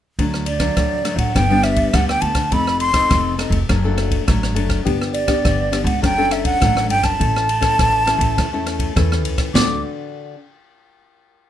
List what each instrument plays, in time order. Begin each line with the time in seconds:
0.19 upright bass D2, nylon-string guitar D3 F#3 A3 D4, kick, ride
0.34 cross-stick
0.46 flute D5, ride
0.60 nylon-string guitar F#3 A3 D4, kick, cross-stick, ride
0.77 upright bass D2, nylon-string guitar A2, kick, cross-stick, ride
1.04 nylon-string guitar F#3 A3 D4, cross-stick, ride
1.16 upright bass A1, flute F#5, kick, ride
1.35 upright bass G1, nylon-string guitar G2 G3 B3 D4, flute G5, kick, cross-stick, ride
1.50 nylon-string guitar G3 B3 D4
1.63 flute E5, cross-stick, ride
1.76 kick, ride
1.93 upright bass D2, nylon-string guitar D3 G3 B3 D4, flute F#5, kick, cross-stick, ride
2.09 flute G5, cross-stick
2.21 upright bass D2, flute A5, ride
2.35 kick, cross-stick, ride
2.51 upright bass F1, nylon-string guitar F3 C4 D#4 A4, flute B5, kick, ride
2.67 cross-stick
2.80 flute C6, ride
2.93 nylon-string guitar C4 D#4 A4, kick, cross-stick, ride
3.09 upright bass F1, nylon-string guitar C3, kick, cross-stick, ride
3.38 nylon-string guitar C4 D#4 A4, cross-stick, ride
3.50 upright bass F1, kick, ride
3.69 upright bass F#1, nylon-string guitar F#3 A3 D4 A4, kick, cross-stick, ride
3.84 nylon-string guitar A3 D4 A4
3.98 cross-stick, ride
4.11 kick, ride
4.27 upright bass A1, nylon-string guitar F#3 A3 D4 A4, kick, cross-stick, ride
4.43 cross-stick
4.55 upright bass F#1, nylon-string guitar A3 D4 A4, ride
4.70 kick, cross-stick, ride
4.85 upright bass G1, nylon-string guitar G3 B3 D4 G4, kick, ride
5.02 cross-stick
5.13 flute D5, ride
5.27 nylon-string guitar B3 D4 G4, kick, cross-stick, ride
5.44 upright bass G1, nylon-string guitar D3, kick, cross-stick, ride
5.72 nylon-string guitar B3 D4 G4, cross-stick, ride
5.84 upright bass C#2, flute F#5, kick, ride
6.02 upright bass F#1, nylon-string guitar F#3 C#4 D4 A4, flute G5, kick, cross-stick, ride
6.18 nylon-string guitar C#4 D4 A4
6.31 flute E5, cross-stick, ride
6.45 flute F#5, kick, ride
6.60 upright bass A1, nylon-string guitar F#3 C#4 D4 A4, kick, cross-stick, ride
6.77 cross-stick
6.89 upright bass G1, flute G5, ride
7.03 flute A5, kick, cross-stick, ride
7.19 upright bass A1, nylon-string guitar A3 C#4 E4 A4, kick, ride
7.36 cross-stick
7.49 ride
7.61 nylon-string guitar C#4 E4 A4, kick, cross-stick, ride
7.78 upright bass A1, nylon-string guitar E3, kick, cross-stick, ride
8.06 nylon-string guitar C#4 E4 A4, cross-stick, ride
8.18 upright bass A1, kick, ride
8.37 upright bass E2, nylon-string guitar A3, kick, cross-stick, ride
8.53 nylon-string guitar C#4 E4 A4
8.66 cross-stick, ride
8.79 kick, ride
8.96 upright bass E2, nylon-string guitar E3 C#4 E4 A4, kick, cross-stick, ride
9.12 cross-stick
9.24 upright bass C#2, ride
9.38 kick, cross-stick, ride
9.54 upright bass D2, nylon-string guitar D3 D4 F#4 A4, flute D6, snare, floor tom, crash